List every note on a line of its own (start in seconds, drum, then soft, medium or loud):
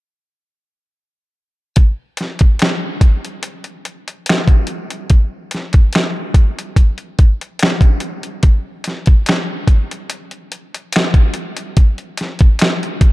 1.76 kick loud
1.76 closed hi-hat medium
2.17 snare soft
2.17 closed hi-hat medium
2.39 kick medium
2.39 closed hi-hat soft
2.59 finger snap medium
2.59 snare loud
2.59 closed hi-hat medium
3.01 kick medium
3.01 closed hi-hat medium
3.25 closed hi-hat soft
3.43 closed hi-hat medium
3.64 closed hi-hat soft
3.85 closed hi-hat medium
4.08 closed hi-hat soft
4.26 finger snap medium
4.26 snare loud
4.26 closed hi-hat medium
4.48 kick medium
4.48 closed hi-hat soft
4.67 closed hi-hat medium
4.90 closed hi-hat soft
5.10 kick loud
5.10 closed hi-hat medium
5.51 snare soft
5.51 closed hi-hat medium
5.73 kick medium
5.73 closed hi-hat soft
5.93 finger snap medium
5.93 snare medium
5.93 closed hi-hat medium
6.34 kick medium
6.34 closed hi-hat medium
6.59 closed hi-hat soft
6.76 kick medium
6.76 closed hi-hat medium
6.98 closed hi-hat soft
7.19 kick medium
7.19 closed hi-hat medium
7.41 closed hi-hat soft
7.59 finger snap medium
7.59 snare loud
7.59 closed hi-hat medium
7.81 kick loud
7.81 closed hi-hat soft
8.00 closed hi-hat medium
8.23 closed hi-hat soft
8.43 kick loud
8.43 closed hi-hat medium
8.84 snare soft
8.84 closed hi-hat medium
9.06 kick medium
9.06 closed hi-hat soft
9.26 finger snap medium
9.26 snare medium
9.26 closed hi-hat medium
9.68 kick medium
9.68 closed hi-hat medium
9.91 closed hi-hat soft
10.10 closed hi-hat medium
10.31 closed hi-hat soft
10.52 closed hi-hat medium
10.74 closed hi-hat soft
10.92 finger snap medium
10.92 snare loud
10.92 closed hi-hat medium
11.14 kick medium
11.14 closed hi-hat soft
11.34 closed hi-hat medium
11.57 closed hi-hat medium
11.77 kick loud
11.77 closed hi-hat medium
11.98 closed hi-hat soft
12.17 snare soft
12.17 closed hi-hat medium
12.39 kick medium
12.39 closed hi-hat soft
12.59 finger snap medium
12.59 snare loud
12.59 closed hi-hat medium
12.83 closed hi-hat soft
13.01 kick medium
13.01 closed hi-hat medium